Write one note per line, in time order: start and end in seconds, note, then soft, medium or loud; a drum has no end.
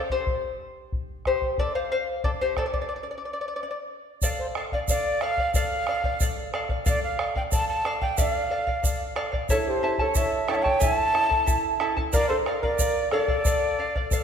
0.10 1.23 G4 medium
0.10 1.26 C5 medium
0.10 bombo low soft
0.27 bombo low medium
0.92 bombo low medium
1.25 1.57 G4 medium
1.25 1.59 C5 medium
1.25 bombo rim soft
1.25 bombo low soft
1.42 bombo low soft
1.58 1.75 A4 medium
1.58 1.75 D5 medium
1.58 bombo low medium
1.75 1.91 C5 medium
1.75 1.91 F5 medium
1.92 2.23 C5 medium
1.92 2.24 F5 medium
2.24 2.30 A4 medium
2.24 2.29 D5 medium
2.24 bombo low medium
2.41 2.57 G4 medium
2.41 2.57 C5 medium
2.57 2.65 A4 medium
2.57 2.65 D5 medium
2.57 bombo rim soft
2.57 bombo low medium
2.66 2.72 D5 medium
2.73 2.80 D5 medium
2.73 bombo low soft
2.82 2.88 D5 soft
2.89 2.95 D5 medium
2.96 3.02 D5 soft
3.03 3.10 D5 soft
3.11 3.16 D5 soft
3.18 3.24 D5 soft
3.25 3.32 D5 soft
3.33 3.40 D5 medium
3.41 3.47 D5 soft
3.48 3.55 D5 medium
3.56 3.62 D5 medium
3.63 3.70 D5 soft
3.71 3.78 D5 soft
4.22 4.55 A4 medium
4.22 4.29 D5 medium
4.22 4.55 D5 medium
4.22 4.56 F5 medium
4.22 bombo low medium
4.22 shaker loud
4.39 4.46 C5 medium
4.55 4.72 A4 medium
4.55 4.73 D5 medium
4.55 4.72 F5 medium
4.55 bombo rim medium
4.72 4.80 D5 medium
4.72 4.89 D5 soft
4.72 4.89 F5 medium
4.72 bombo low soft
4.88 5.21 A4 medium
4.88 5.23 D5 medium
4.88 5.21 D5 medium
4.88 5.22 F5 medium
4.88 bombo low medium
4.88 shaker loud
5.21 5.38 A4 medium
5.21 5.39 D5 medium
5.21 5.54 F5 loud
5.21 5.37 F5 medium
5.21 bombo rim medium
5.37 5.54 D5 soft
5.37 5.55 F5 soft
5.37 bombo low medium
5.54 5.87 A4 medium
5.54 5.87 D5 medium
5.54 6.49 F5 loud
5.54 5.88 F5 medium
5.54 bombo low medium
5.54 shaker medium
5.87 6.04 A4 medium
5.87 6.04 D5 medium
5.87 6.03 F5 medium
5.87 bombo rim medium
6.04 6.20 D5 soft
6.04 6.20 F5 medium
6.04 bombo low medium
6.20 6.52 A4 medium
6.20 6.53 D5 medium
6.20 6.53 F5 medium
6.20 bombo low medium
6.20 shaker loud
6.53 6.70 A4 medium
6.53 6.69 D5 medium
6.53 6.68 F5 medium
6.53 bombo rim medium
6.69 6.85 D5 soft
6.69 6.85 F5 soft
6.69 bombo low medium
6.86 7.17 A4 medium
6.86 7.18 D5 medium
6.86 7.02 D5 loud
6.86 7.19 F5 medium
6.86 bombo low medium
6.86 shaker medium
7.03 7.34 F5 medium
7.19 7.36 A4 medium
7.19 7.35 D5 medium
7.19 7.34 F5 medium
7.19 bombo rim medium
7.35 7.51 D5 soft
7.35 7.52 F5 medium
7.35 7.43 G5 medium
7.35 bombo low medium
7.52 7.83 A4 medium
7.52 7.84 D5 medium
7.52 7.85 F5 medium
7.52 7.68 A5 loud
7.52 bombo low medium
7.52 shaker loud
7.69 7.99 A5 loud
7.85 8.01 A4 medium
7.85 8.02 D5 medium
7.85 8.00 F5 medium
7.85 bombo rim medium
8.01 8.17 D5 soft
8.01 8.17 F5 medium
8.01 8.19 G5 medium
8.01 bombo low medium
8.18 8.49 A4 medium
8.18 8.50 D5 medium
8.18 9.17 D5 medium
8.18 8.31 E5 medium
8.18 8.50 F5 medium
8.18 bombo low medium
8.18 shaker loud
8.31 9.17 F5 medium
8.50 8.67 A4 medium
8.50 8.67 D5 medium
8.50 8.65 F5 medium
8.67 8.82 D5 soft
8.67 8.83 F5 medium
8.67 bombo low soft
8.83 9.14 A4 medium
8.83 9.15 D5 medium
8.83 9.15 F5 medium
8.83 bombo low medium
8.83 shaker loud
9.16 9.33 A4 medium
9.16 9.32 D5 medium
9.16 9.31 F5 medium
9.16 bombo rim medium
9.32 9.50 D5 soft
9.32 9.49 F5 soft
9.32 bombo low medium
9.49 9.82 E4 medium
9.49 9.83 A4 medium
9.49 9.56 A4 medium
9.49 9.83 C#5 medium
9.49 9.57 C#5 medium
9.49 9.82 E5 medium
9.49 9.83 A5 medium
9.49 bombo low medium
9.49 shaker medium
9.67 9.98 G4 medium
9.67 9.97 C5 medium
9.83 9.99 E4 medium
9.83 9.99 A4 medium
9.83 10.00 E5 medium
9.83 9.98 A5 medium
9.98 10.14 E4 soft
9.98 10.15 A4 medium
9.98 10.16 A4 medium
9.98 10.18 C#5 medium
9.98 10.15 A5 medium
9.98 bombo low medium
10.15 10.47 E4 medium
10.15 10.48 A4 medium
10.15 10.48 C#5 medium
10.15 10.47 E5 medium
10.15 10.51 E5 medium
10.15 10.48 A5 medium
10.15 bombo low medium
10.15 shaker loud
10.48 10.65 E4 medium
10.48 10.64 A4 medium
10.48 10.55 C#5 medium
10.48 10.65 E5 medium
10.48 10.56 G5 loud
10.48 10.63 A5 medium
10.48 bombo rim medium
10.55 10.62 C#5 medium
10.55 10.64 E5 medium
10.62 10.79 E4 soft
10.62 10.79 A4 soft
10.62 10.82 C#5 medium
10.62 10.82 G5 loud
10.62 10.80 A5 medium
10.62 bombo low medium
10.80 11.13 E4 medium
10.80 11.13 A4 medium
10.80 11.14 C#5 medium
10.80 11.12 E5 medium
10.80 11.81 E5 medium
10.80 10.96 G#5 loud
10.80 11.14 A5 medium
10.80 bombo low medium
10.80 shaker loud
10.96 11.80 A5 loud
11.13 11.29 E4 medium
11.13 11.29 A4 medium
11.13 11.31 E5 medium
11.13 11.28 A5 medium
11.13 bombo rim medium
11.29 11.46 E4 medium
11.29 11.46 A4 medium
11.29 11.47 A5 soft
11.29 bombo low medium
11.46 11.79 E4 medium
11.46 11.80 A4 medium
11.46 11.78 E5 medium
11.46 11.80 A5 medium
11.46 bombo low medium
11.46 shaker medium
11.80 11.97 E4 medium
11.80 11.96 A4 medium
11.80 11.97 E5 medium
11.80 11.95 A5 medium
11.80 bombo rim medium
11.97 12.13 E4 soft
11.97 12.13 A4 soft
11.97 12.14 A5 medium
11.97 bombo low medium
12.13 12.45 A#4 medium
12.13 12.29 A#4 medium
12.13 12.28 D5 loud
12.13 12.46 D5 medium
12.13 12.46 F5 medium
12.13 bombo low medium
12.13 shaker medium
12.29 12.37 A4 medium
12.29 12.36 C5 medium
12.46 12.63 A#4 medium
12.46 12.63 D5 medium
12.46 12.62 F5 medium
12.46 bombo rim medium
12.63 13.09 A#4 medium
12.63 13.09 D5 medium
12.63 12.79 D5 soft
12.63 12.79 F5 medium
12.63 bombo low medium
12.79 13.11 A#4 medium
12.79 13.11 D5 medium
12.79 13.12 F5 medium
12.79 bombo low medium
12.79 shaker loud
13.11 14.23 A4 medium
13.11 13.29 A#4 medium
13.11 14.23 D5 loud
13.11 13.28 D5 medium
13.11 13.27 F5 medium
13.11 bombo rim medium
13.28 13.45 D5 soft
13.28 13.45 F5 soft
13.28 bombo low medium
13.45 13.77 A4 medium
13.45 13.78 D5 medium
13.45 13.79 F5 medium
13.45 bombo low medium
13.45 shaker medium
13.79 13.95 A4 medium
13.79 13.96 D5 medium
13.79 13.94 F5 medium
13.95 14.12 D5 medium
13.95 14.12 F5 medium
13.95 bombo low medium
14.11 14.23 A4 medium
14.11 14.23 D5 medium
14.11 14.23 F5 medium
14.11 bombo low medium
14.11 shaker medium